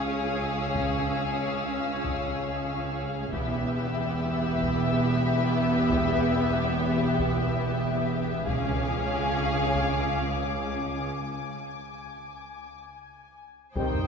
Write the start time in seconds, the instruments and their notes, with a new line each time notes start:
Already playing: cello section C#2, double bass section C#2, viola section C#4, violin section G#4 F5 C#6 D#6 E6
0.75 taiko
2.04 taiko
3.33 double bass section E1, cello section E2, viola section B3, violin section G4 E5 B5 E6, taiko
4.62 taiko
5.91 taiko
7.19 taiko
8.46 double bass section C#2, cello section C#2, viola section C#4, violin section G#4 F5 G#5 D6, taiko
9.75 taiko
13.76 double bass section C2, cello section C2, trombone section D#3 G3, french horn section C4 G4, viola section D#4, violin section C5 G5, taiko
13.93 taiko low